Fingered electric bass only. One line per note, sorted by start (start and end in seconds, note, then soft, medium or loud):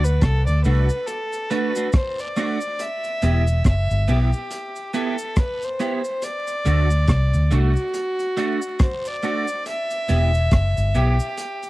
0.00 0.19 D2 loud
0.23 0.45 C2 loud
0.48 0.64 D2 medium
0.66 0.88 C2 loud
3.23 3.62 E1 loud
3.66 3.88 F#1 medium
3.91 4.07 G1 medium
4.09 4.31 B1 medium
6.66 7.05 D2 loud
7.09 7.32 C2 medium
7.34 7.50 D2 medium
7.52 7.75 C2 medium
10.10 10.49 E1 medium
10.52 10.75 F#1 medium
10.78 10.94 G1 medium
10.96 11.18 B1 medium